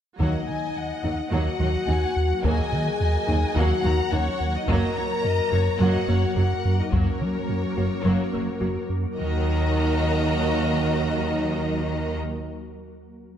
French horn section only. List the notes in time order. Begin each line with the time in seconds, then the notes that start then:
0.20 D#4
1.32 F#4
2.44 G#4
3.56 F#4
4.12 C#4
4.55 D#4
4.68 A#4
5.81 F#4
6.37 F#4
6.80 D#4
6.93 C#4
9.17 D#4